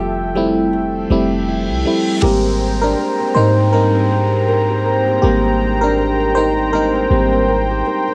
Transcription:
0.00 1.06 F1 loud
0.00 2.19 F3 medium
0.00 2.22 F3 medium
0.00 0.35 G3 medium
0.00 0.36 A3 medium
0.00 0.72 A3 medium
0.00 0.37 C4 medium
0.00 0.34 E4 medium
0.00 2.24 F4 medium
0.00 1.10 G4 medium
0.00 2.19 A4 medium
0.00 2.19 E5 medium
0.00 2.19 G5 medium
0.35 0.99 G3 medium
0.35 1.00 A3 medium
0.35 1.00 C4 medium
0.35 1.47 E4 medium
0.35 1.00 E4 medium
0.73 1.84 A3 medium
0.73 reverse cymbal medium
1.10 1.71 F1 loud
1.10 1.74 G3 medium
1.10 1.75 A3 medium
1.10 1.75 C4 medium
1.10 1.75 E4 medium
1.10 2.23 G4 medium
1.48 2.32 E4 medium
1.70 1.85 C2 loud
1.85 2.17 G3 medium
1.85 2.32 A3 medium
1.85 2.18 A3 medium
1.85 2.18 C4 medium
1.85 2.18 E4 medium
2.22 2.95 G#1 loud
2.22 2.75 G3 medium
2.22 3.72 G#3 medium
2.22 2.79 A#3 medium
2.22 2.76 C4 medium
2.22 2.83 G4 medium
2.22 2.97 A#4 medium
2.22 8.14 C5 medium
2.22 8.14 G5 medium
2.22 8.14 A#5 medium
2.22 downlifter medium
2.45 2.82 C4 medium
2.61 3.20 G4 medium
2.82 3.94 C4 medium
2.82 3.33 D4 medium
2.82 3.31 A#4 medium
2.98 3.34 A#4 medium
3.20 3.57 G4 medium
3.35 5.19 G#2 loud
3.35 3.51 D#4 medium
3.35 3.72 A#4 medium
3.35 3.49 C5 loud
3.57 4.10 G4 medium
3.73 4.07 G3 soft
3.73 5.22 G#3 medium
3.73 4.07 A#3 soft
3.73 4.07 C4 medium
3.73 4.82 D#4 medium
3.73 4.81 A#4 medium
3.73 4.47 A#4 medium
3.95 4.32 C4 medium
4.11 4.69 G4 medium
4.32 5.45 C4 medium
4.48 4.84 A#4 medium
4.70 5.07 G4 medium
4.86 5.23 A#4 medium
5.08 5.60 G4 medium
5.22 7.07 G#1 loud
5.22 7.09 G3 medium
5.22 6.72 G#3 medium
5.22 5.79 A#3 medium
5.22 7.10 C4 medium
5.22 5.78 G4 medium
5.22 5.97 A#4 medium
5.45 5.82 C4 medium
5.61 6.20 G4 medium
5.81 6.95 C4 medium
5.81 6.32 D4 medium
5.81 6.37 A#4 loud
5.98 6.35 A#4 medium
6.20 6.57 G4 medium
6.35 6.71 D#4 medium
6.35 6.72 A#4 medium
6.35 6.74 C5 loud
6.57 7.10 G4 medium
6.73 8.14 G#3 medium
6.73 7.82 D#4 medium
6.73 7.81 A#4 medium
6.73 7.47 A#4 medium
6.95 7.32 C4 medium
7.10 7.82 G#1 loud
7.10 7.44 G3 medium
7.10 7.44 A#3 soft
7.10 7.45 C4 medium
7.10 7.70 G4 medium
7.32 8.14 C4 medium
7.48 7.85 A#4 medium
7.70 8.07 G4 medium
7.86 8.14 A#4 medium
8.08 8.14 G4 medium

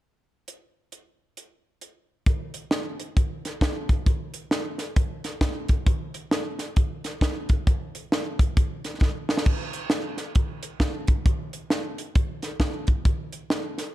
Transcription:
0.48 closed hi-hat medium
0.92 closed hi-hat soft
1.37 closed hi-hat medium
1.81 closed hi-hat medium
2.26 kick loud
2.26 closed hi-hat medium
2.54 closed hi-hat medium
2.71 snare medium
2.71 closed hi-hat medium
3.00 closed hi-hat medium
3.17 kick loud
3.17 closed hi-hat medium
3.45 snare soft
3.45 closed hi-hat medium
3.61 kick medium
3.61 snare loud
3.61 closed hi-hat medium
3.89 kick medium
3.89 closed hi-hat medium
4.06 kick loud
4.06 closed hi-hat medium
4.34 closed hi-hat medium
4.51 snare medium
4.51 closed hi-hat medium
4.78 snare soft
4.78 closed hi-hat medium
4.96 kick loud
4.96 closed hi-hat medium
5.24 snare soft
5.24 closed hi-hat medium
5.41 kick medium
5.41 snare loud
5.41 closed hi-hat medium
5.69 kick medium
5.69 closed hi-hat medium
5.87 kick loud
5.87 closed hi-hat medium
6.14 closed hi-hat medium
6.31 snare medium
6.31 closed hi-hat medium
6.59 snare soft
6.59 closed hi-hat medium
6.76 kick loud
6.76 closed hi-hat medium
7.04 snare soft
7.04 closed hi-hat medium
7.21 kick medium
7.21 snare loud
7.21 closed hi-hat medium
7.49 kick medium
7.49 closed hi-hat medium
7.67 kick loud
7.67 closed hi-hat medium
7.95 closed hi-hat medium
8.12 snare medium
8.12 closed hi-hat medium
8.39 kick loud
8.39 closed hi-hat medium
8.57 kick loud
8.57 closed hi-hat medium
8.84 snare soft
8.84 closed hi-hat medium
9.01 kick medium
9.01 snare soft
9.29 snare medium
9.37 snare medium
9.46 kick loud
9.46 crash medium
9.73 closed hi-hat medium
9.90 snare loud
9.90 closed hi-hat medium
10.17 snare soft
10.17 closed hi-hat medium
10.35 kick loud
10.35 closed hi-hat medium
10.63 closed hi-hat medium
10.80 kick medium
10.80 snare loud
10.80 closed hi-hat medium
11.07 kick medium
11.07 closed hi-hat medium
11.26 kick loud
11.26 closed hi-hat medium
11.53 closed hi-hat medium
11.70 snare medium
11.70 closed hi-hat medium
11.98 closed hi-hat medium
12.15 kick loud
12.15 closed hi-hat medium
12.42 snare soft
12.42 closed hi-hat medium
12.60 kick medium
12.60 snare loud
12.60 closed hi-hat medium
12.87 kick medium
12.87 closed hi-hat medium
13.05 kick loud
13.05 closed hi-hat medium
13.32 closed hi-hat medium
13.50 snare medium
13.50 closed hi-hat medium
13.78 snare soft
13.78 closed hi-hat medium

